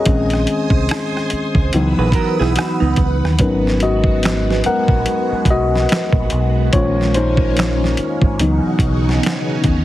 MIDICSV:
0, 0, Header, 1, 7, 480
1, 0, Start_track
1, 0, Key_signature, 5, "minor"
1, 0, Tempo, 833333
1, 35, Time_signature, 4, 2, 24, 8
1, 5671, End_track
2, 0, Start_track
2, 0, Title_t, "Hollow-body jazz guitar"
2, 0, Program_c, 0, 26
2, 1145, Note_on_c, 0, 68, 58
2, 1145, Note_on_c, 0, 71, 70
2, 1234, Note_off_c, 0, 71, 0
2, 1235, Note_off_c, 0, 68, 0
2, 1237, Note_on_c, 0, 70, 72
2, 1243, Note_on_c, 0, 66, 67
2, 1370, Note_off_c, 0, 70, 0
2, 1373, Note_off_c, 0, 66, 0
2, 1379, Note_on_c, 0, 68, 80
2, 1384, Note_on_c, 0, 64, 66
2, 1471, Note_off_c, 0, 68, 0
2, 1474, Note_off_c, 0, 64, 0
2, 1478, Note_on_c, 0, 63, 63
2, 1479, Note_on_c, 0, 66, 76
2, 1607, Note_off_c, 0, 63, 0
2, 1610, Note_off_c, 0, 66, 0
2, 1614, Note_on_c, 0, 63, 70
2, 1616, Note_on_c, 0, 59, 57
2, 1937, Note_off_c, 0, 63, 0
2, 1938, Note_off_c, 0, 59, 0
2, 5671, End_track
3, 0, Start_track
3, 0, Title_t, "String machine"
3, 0, Program_c, 1, 50
3, 35, Note_on_c, 1, 87, 88
3, 36, Note_on_c, 1, 80, 72
3, 37, Note_on_c, 1, 72, 78
3, 985, Note_off_c, 1, 87, 0
3, 986, Note_off_c, 1, 72, 0
3, 986, Note_off_c, 1, 80, 0
3, 1000, Note_on_c, 1, 88, 92
3, 1002, Note_on_c, 1, 78, 71
3, 1003, Note_on_c, 1, 87, 80
3, 1004, Note_on_c, 1, 71, 91
3, 1947, Note_off_c, 1, 88, 0
3, 1948, Note_off_c, 1, 78, 0
3, 1949, Note_off_c, 1, 87, 0
3, 1950, Note_off_c, 1, 71, 0
3, 1960, Note_on_c, 1, 56, 72
3, 1960, Note_on_c, 1, 59, 70
3, 1961, Note_on_c, 1, 66, 89
3, 3858, Note_off_c, 1, 56, 0
3, 3858, Note_off_c, 1, 59, 0
3, 3859, Note_off_c, 1, 66, 0
3, 3880, Note_on_c, 1, 56, 75
3, 3883, Note_on_c, 1, 58, 72
3, 3883, Note_on_c, 1, 61, 83
3, 4828, Note_off_c, 1, 56, 0
3, 4829, Note_off_c, 1, 58, 0
3, 4829, Note_off_c, 1, 61, 0
3, 4838, Note_on_c, 1, 61, 78
3, 4840, Note_on_c, 1, 49, 85
3, 4841, Note_on_c, 1, 63, 78
3, 4842, Note_on_c, 1, 47, 70
3, 4842, Note_on_c, 1, 66, 96
3, 5671, Note_off_c, 1, 47, 0
3, 5671, Note_off_c, 1, 49, 0
3, 5671, Note_off_c, 1, 61, 0
3, 5671, Note_off_c, 1, 63, 0
3, 5671, Note_off_c, 1, 66, 0
3, 5671, End_track
4, 0, Start_track
4, 0, Title_t, "Tine electric piano"
4, 0, Program_c, 2, 4
4, 0, Control_c, 2, 64, 127
4, 0, Note_on_c, 2, 68, 77
4, 0, Note_on_c, 2, 75, 88
4, 39, Note_on_c, 2, 51, 47
4, 42, Control_c, 2, 64, 0
4, 43, Note_on_c, 2, 56, 46
4, 45, Note_on_c, 2, 60, 49
4, 48, Note_on_c, 2, 61, 58
4, 141, Control_c, 2, 64, 127
4, 487, Note_off_c, 2, 75, 0
4, 500, Note_off_c, 2, 68, 0
4, 973, Note_off_c, 2, 51, 0
4, 976, Note_off_c, 2, 56, 0
4, 977, Note_off_c, 2, 60, 0
4, 978, Note_off_c, 2, 61, 0
4, 1002, Control_c, 2, 64, 0
4, 1005, Note_on_c, 2, 52, 59
4, 1007, Note_on_c, 2, 54, 52
4, 1007, Note_on_c, 2, 59, 50
4, 1012, Note_on_c, 2, 63, 62
4, 1118, Control_c, 2, 64, 127
4, 1937, Note_off_c, 2, 52, 0
4, 1937, Note_off_c, 2, 59, 0
4, 1938, Note_off_c, 2, 54, 0
4, 1940, Note_off_c, 2, 63, 0
4, 1961, Control_c, 2, 64, 0
4, 1961, Note_on_c, 2, 54, 53
4, 1962, Note_on_c, 2, 71, 68
4, 1965, Note_on_c, 2, 70, 45
4, 1967, Note_on_c, 2, 59, 46
4, 1969, Note_on_c, 2, 61, 52
4, 1970, Note_on_c, 2, 63, 53
4, 2061, Control_c, 2, 64, 127
4, 2186, Note_off_c, 2, 63, 0
4, 2204, Note_on_c, 2, 75, 82
4, 2205, Note_off_c, 2, 71, 0
4, 2208, Note_on_c, 2, 66, 64
4, 2293, Note_off_c, 2, 54, 0
4, 2295, Note_off_c, 2, 70, 0
4, 2296, Note_off_c, 2, 59, 0
4, 2297, Note_off_c, 2, 61, 0
4, 2658, Note_off_c, 2, 66, 0
4, 2686, Note_on_c, 2, 78, 90
4, 2689, Note_on_c, 2, 70, 76
4, 2694, Note_off_c, 2, 75, 0
4, 3137, Note_off_c, 2, 78, 0
4, 3139, Note_off_c, 2, 70, 0
4, 3171, Note_on_c, 2, 75, 84
4, 3174, Note_on_c, 2, 66, 71
4, 3620, Note_off_c, 2, 75, 0
4, 3621, Note_off_c, 2, 66, 0
4, 3878, Note_on_c, 2, 73, 92
4, 3882, Control_c, 2, 64, 0
4, 3883, Note_on_c, 2, 51, 47
4, 3884, Note_on_c, 2, 56, 44
4, 3888, Note_on_c, 2, 72, 49
4, 3890, Note_on_c, 2, 61, 55
4, 3891, Note_on_c, 2, 65, 74
4, 3966, Control_c, 2, 64, 127
4, 4106, Note_off_c, 2, 65, 0
4, 4111, Note_off_c, 2, 72, 0
4, 4118, Note_on_c, 2, 72, 88
4, 4123, Note_off_c, 2, 73, 0
4, 4132, Note_on_c, 2, 63, 71
4, 4214, Note_off_c, 2, 51, 0
4, 4215, Note_off_c, 2, 56, 0
4, 4218, Note_off_c, 2, 61, 0
4, 4813, Note_off_c, 2, 72, 0
4, 4820, Note_off_c, 2, 63, 0
4, 4839, Note_on_c, 2, 52, 52
4, 4842, Control_c, 2, 64, 0
4, 4842, Note_on_c, 2, 54, 49
4, 4845, Note_on_c, 2, 59, 48
4, 4847, Note_on_c, 2, 63, 63
4, 4947, Control_c, 2, 64, 127
4, 5534, Note_off_c, 2, 52, 0
4, 5535, Note_off_c, 2, 54, 0
4, 5536, Note_off_c, 2, 59, 0
4, 5538, Note_off_c, 2, 63, 0
4, 5671, End_track
5, 0, Start_track
5, 0, Title_t, "Fingered electric bass"
5, 0, Program_c, 3, 33
5, 40, Note_on_c, 3, 34, 91
5, 257, Note_off_c, 3, 34, 0
5, 408, Note_on_c, 3, 36, 75
5, 502, Note_off_c, 3, 36, 0
5, 896, Note_on_c, 3, 37, 80
5, 986, Note_off_c, 3, 37, 0
5, 1001, Note_on_c, 3, 37, 86
5, 1127, Note_off_c, 3, 37, 0
5, 1141, Note_on_c, 3, 34, 87
5, 1229, Note_off_c, 3, 34, 0
5, 1384, Note_on_c, 3, 35, 77
5, 1471, Note_off_c, 3, 35, 0
5, 1621, Note_on_c, 3, 37, 77
5, 1709, Note_off_c, 3, 37, 0
5, 1716, Note_on_c, 3, 37, 81
5, 1845, Note_off_c, 3, 37, 0
5, 1863, Note_on_c, 3, 39, 81
5, 1950, Note_off_c, 3, 39, 0
5, 1961, Note_on_c, 3, 32, 79
5, 2654, Note_off_c, 3, 32, 0
5, 2814, Note_on_c, 3, 34, 80
5, 2905, Note_off_c, 3, 34, 0
5, 3145, Note_on_c, 3, 35, 82
5, 3369, Note_off_c, 3, 35, 0
5, 3530, Note_on_c, 3, 34, 79
5, 3623, Note_off_c, 3, 34, 0
5, 3640, Note_on_c, 3, 35, 86
5, 3858, Note_off_c, 3, 35, 0
5, 3881, Note_on_c, 3, 34, 93
5, 4575, Note_off_c, 3, 34, 0
5, 4737, Note_on_c, 3, 32, 84
5, 4827, Note_off_c, 3, 32, 0
5, 4835, Note_on_c, 3, 37, 91
5, 4964, Note_off_c, 3, 37, 0
5, 5066, Note_on_c, 3, 35, 83
5, 5290, Note_off_c, 3, 35, 0
5, 5556, Note_on_c, 3, 39, 78
5, 5671, Note_off_c, 3, 39, 0
5, 5671, End_track
6, 0, Start_track
6, 0, Title_t, "Muted fingered electric bass strokes"
6, 763, Note_on_c, 9, 29, 44
6, 821, Note_off_c, 9, 29, 0
6, 2685, Note_on_c, 9, 29, 45
6, 2742, Note_off_c, 9, 29, 0
6, 3065, Note_on_c, 9, 29, 44
6, 3122, Note_off_c, 9, 29, 0
6, 4981, Note_on_c, 9, 29, 45
6, 5039, Note_off_c, 9, 29, 0
6, 5671, End_track
7, 0, Start_track
7, 0, Title_t, "Drums"
7, 32, Note_on_c, 9, 42, 98
7, 35, Note_on_c, 9, 36, 115
7, 89, Note_off_c, 9, 42, 0
7, 93, Note_off_c, 9, 36, 0
7, 173, Note_on_c, 9, 42, 42
7, 193, Note_on_c, 9, 37, 32
7, 231, Note_off_c, 9, 42, 0
7, 250, Note_off_c, 9, 37, 0
7, 271, Note_on_c, 9, 42, 56
7, 328, Note_off_c, 9, 42, 0
7, 405, Note_on_c, 9, 36, 93
7, 462, Note_off_c, 9, 36, 0
7, 512, Note_on_c, 9, 42, 66
7, 526, Note_on_c, 9, 37, 114
7, 570, Note_off_c, 9, 42, 0
7, 583, Note_off_c, 9, 37, 0
7, 674, Note_on_c, 9, 37, 29
7, 732, Note_off_c, 9, 37, 0
7, 749, Note_on_c, 9, 42, 67
7, 807, Note_off_c, 9, 42, 0
7, 892, Note_on_c, 9, 36, 86
7, 949, Note_off_c, 9, 36, 0
7, 995, Note_on_c, 9, 42, 81
7, 1053, Note_off_c, 9, 42, 0
7, 1222, Note_on_c, 9, 36, 90
7, 1229, Note_on_c, 9, 42, 60
7, 1279, Note_off_c, 9, 36, 0
7, 1287, Note_off_c, 9, 42, 0
7, 1394, Note_on_c, 9, 37, 36
7, 1452, Note_off_c, 9, 37, 0
7, 1472, Note_on_c, 9, 42, 81
7, 1490, Note_on_c, 9, 37, 109
7, 1530, Note_off_c, 9, 42, 0
7, 1547, Note_off_c, 9, 37, 0
7, 1707, Note_on_c, 9, 42, 59
7, 1712, Note_on_c, 9, 36, 86
7, 1765, Note_off_c, 9, 42, 0
7, 1770, Note_off_c, 9, 36, 0
7, 1872, Note_on_c, 9, 37, 31
7, 1930, Note_off_c, 9, 37, 0
7, 1950, Note_on_c, 9, 42, 96
7, 1956, Note_on_c, 9, 36, 125
7, 2008, Note_off_c, 9, 42, 0
7, 2013, Note_off_c, 9, 36, 0
7, 2115, Note_on_c, 9, 38, 32
7, 2173, Note_off_c, 9, 38, 0
7, 2190, Note_on_c, 9, 42, 66
7, 2248, Note_off_c, 9, 42, 0
7, 2325, Note_on_c, 9, 36, 90
7, 2383, Note_off_c, 9, 36, 0
7, 2436, Note_on_c, 9, 42, 72
7, 2450, Note_on_c, 9, 38, 106
7, 2454, Note_on_c, 9, 26, 86
7, 2494, Note_off_c, 9, 42, 0
7, 2508, Note_off_c, 9, 38, 0
7, 2512, Note_off_c, 9, 26, 0
7, 2595, Note_on_c, 9, 38, 30
7, 2652, Note_off_c, 9, 38, 0
7, 2672, Note_on_c, 9, 42, 69
7, 2729, Note_off_c, 9, 42, 0
7, 2812, Note_on_c, 9, 36, 93
7, 2870, Note_off_c, 9, 36, 0
7, 2913, Note_on_c, 9, 42, 83
7, 2971, Note_off_c, 9, 42, 0
7, 3141, Note_on_c, 9, 36, 89
7, 3144, Note_on_c, 9, 42, 63
7, 3198, Note_off_c, 9, 36, 0
7, 3201, Note_off_c, 9, 42, 0
7, 3315, Note_on_c, 9, 38, 36
7, 3373, Note_off_c, 9, 38, 0
7, 3393, Note_on_c, 9, 42, 77
7, 3411, Note_on_c, 9, 38, 109
7, 3415, Note_on_c, 9, 26, 80
7, 3451, Note_off_c, 9, 42, 0
7, 3468, Note_off_c, 9, 38, 0
7, 3472, Note_off_c, 9, 26, 0
7, 3528, Note_on_c, 9, 36, 84
7, 3586, Note_off_c, 9, 36, 0
7, 3629, Note_on_c, 9, 42, 59
7, 3687, Note_off_c, 9, 42, 0
7, 3875, Note_on_c, 9, 42, 106
7, 3877, Note_on_c, 9, 36, 120
7, 3932, Note_off_c, 9, 42, 0
7, 3935, Note_off_c, 9, 36, 0
7, 4038, Note_on_c, 9, 38, 32
7, 4095, Note_off_c, 9, 38, 0
7, 4115, Note_on_c, 9, 42, 62
7, 4173, Note_off_c, 9, 42, 0
7, 4247, Note_on_c, 9, 36, 89
7, 4305, Note_off_c, 9, 36, 0
7, 4358, Note_on_c, 9, 42, 71
7, 4372, Note_on_c, 9, 38, 99
7, 4376, Note_on_c, 9, 26, 76
7, 4416, Note_off_c, 9, 42, 0
7, 4430, Note_off_c, 9, 38, 0
7, 4434, Note_off_c, 9, 26, 0
7, 4517, Note_on_c, 9, 38, 29
7, 4574, Note_off_c, 9, 38, 0
7, 4593, Note_on_c, 9, 42, 71
7, 4650, Note_off_c, 9, 42, 0
7, 4732, Note_on_c, 9, 36, 91
7, 4790, Note_off_c, 9, 36, 0
7, 4835, Note_on_c, 9, 42, 82
7, 4893, Note_off_c, 9, 42, 0
7, 5062, Note_on_c, 9, 36, 81
7, 5068, Note_on_c, 9, 42, 69
7, 5119, Note_off_c, 9, 36, 0
7, 5125, Note_off_c, 9, 42, 0
7, 5236, Note_on_c, 9, 38, 33
7, 5294, Note_off_c, 9, 38, 0
7, 5319, Note_on_c, 9, 42, 78
7, 5336, Note_on_c, 9, 38, 113
7, 5340, Note_on_c, 9, 26, 83
7, 5376, Note_off_c, 9, 42, 0
7, 5394, Note_off_c, 9, 38, 0
7, 5398, Note_off_c, 9, 26, 0
7, 5551, Note_on_c, 9, 42, 60
7, 5553, Note_on_c, 9, 36, 86
7, 5608, Note_off_c, 9, 42, 0
7, 5611, Note_off_c, 9, 36, 0
7, 5671, End_track
0, 0, End_of_file